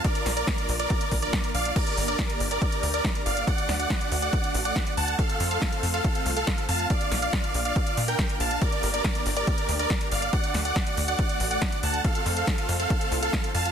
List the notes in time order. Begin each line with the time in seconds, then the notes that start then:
Already playing: F4
0.04 A#3 D4 A#4 D5, kick, closed hi-hat
0.15 closed hi-hat
0.26 A#1, snare, open hi-hat
0.37 A#4 D5, closed hi-hat
0.47 kick, snare, closed hi-hat
0.58 closed hi-hat
0.69 A#1, open hi-hat
0.79 A#4 D5, closed hi-hat
0.90 kick, closed hi-hat
1.01 closed hi-hat
1.12 A#1, kick, open hi-hat
1.22 A#4 D5, closed hi-hat
1.33 kick, snare, closed hi-hat
1.44 closed hi-hat
1.54 A#1 D5 F5, open hi-hat
1.65 closed hi-hat
1.76 G4 A#4 D5, kick, closed hi-hat, crash
1.87 closed hi-hat
1.97 G1, open hi-hat
2.08 A#4 D5, closed hi-hat
2.19 kick, snare, closed hi-hat
2.30 closed hi-hat
2.40 G1, open hi-hat
2.51 A#4 D5, closed hi-hat
2.62 kick, closed hi-hat
2.72 closed hi-hat
2.83 D2, open hi-hat
2.94 A#4 D5, closed hi-hat
3.04 kick, snare, closed hi-hat
3.15 closed hi-hat
3.26 G1 D5 F5, open hi-hat
3.37 closed hi-hat
3.47 A3 D4 F#4 D5 F#5, kick, closed hi-hat
3.58 closed hi-hat
3.69 D2, snare, open hi-hat
3.79 D5 F#5, closed hi-hat
3.90 kick, snare, closed hi-hat
4.01 closed hi-hat
4.12 D2, open hi-hat
4.22 D5 F#5, closed hi-hat
4.33 kick, closed hi-hat
4.44 closed hi-hat
4.54 A1, open hi-hat
4.65 D5 F#5, closed hi-hat
4.76 kick, snare, closed hi-hat
4.87 closed hi-hat
4.97 D2 F#5 A5, open hi-hat
5.08 closed hi-hat
5.19 A4 F5, kick, closed hi-hat
5.29 closed hi-hat
5.40 F2, open hi-hat
5.51 A4 F5, closed hi-hat
5.62 kick, snare, closed hi-hat
5.72 closed hi-hat
5.83 F2, open hi-hat
5.94 A4 F5, closed hi-hat
6.04 kick, closed hi-hat
6.15 closed hi-hat
6.26 C2, open hi-hat
6.37 A4 F5, closed hi-hat
6.47 kick, snare, closed hi-hat
6.58 closed hi-hat
6.69 F2 F5 A5, open hi-hat
6.79 closed hi-hat
6.90 D5 F5, kick, closed hi-hat
7.01 closed hi-hat
7.12 A#1, snare, open hi-hat
7.22 D5 F5, closed hi-hat
7.33 kick, snare, closed hi-hat
7.44 closed hi-hat
7.54 A#1, open hi-hat
7.65 D5 F5, closed hi-hat
7.76 kick, closed hi-hat
7.87 closed hi-hat
7.97 A#2, open hi-hat
8.08 A#4 G5, closed hi-hat
8.19 kick, snare, closed hi-hat
8.29 closed hi-hat
8.40 A#1 F5 A5, open hi-hat
8.51 closed hi-hat
8.62 G4 A#4 D5, kick, closed hi-hat
8.72 closed hi-hat
8.83 G1, open hi-hat
8.94 A#4 D5, closed hi-hat
9.04 kick, snare, closed hi-hat
9.15 closed hi-hat
9.26 G1, open hi-hat
9.37 A#4 D5, closed hi-hat
9.47 kick, closed hi-hat
9.58 closed hi-hat
9.69 D2, open hi-hat
9.79 A#4 D5, closed hi-hat
9.90 kick, snare, closed hi-hat
10.01 closed hi-hat
10.11 G1 D5 F5, open hi-hat
10.22 closed hi-hat
10.33 A3 F#4 D5 F#5, kick, closed hi-hat
10.44 closed hi-hat
10.54 D2, snare, open hi-hat
10.65 D5 F#5, closed hi-hat
10.76 kick, snare, closed hi-hat
10.87 closed hi-hat
10.97 D2, open hi-hat
11.08 D5 F#5, closed hi-hat
11.19 kick, closed hi-hat
11.29 closed hi-hat
11.40 A1, open hi-hat
11.51 D5 F#5, closed hi-hat
11.62 kick, snare, closed hi-hat
11.72 closed hi-hat
11.83 D2 F#5 A5, open hi-hat
11.94 closed hi-hat
12.04 C4 F4 A4 C5 F5, kick, closed hi-hat
12.15 closed hi-hat
12.26 F2, open hi-hat
12.37 A4 F5, closed hi-hat
12.47 kick, snare, closed hi-hat
12.58 closed hi-hat
12.69 F2, open hi-hat
12.80 A4 F5, closed hi-hat
12.90 kick, closed hi-hat
13.01 closed hi-hat
13.12 C2, open hi-hat
13.22 A4 F5, closed hi-hat
13.33 kick, snare, closed hi-hat
13.44 closed hi-hat
13.54 F2 F5 A5, open hi-hat
13.65 closed hi-hat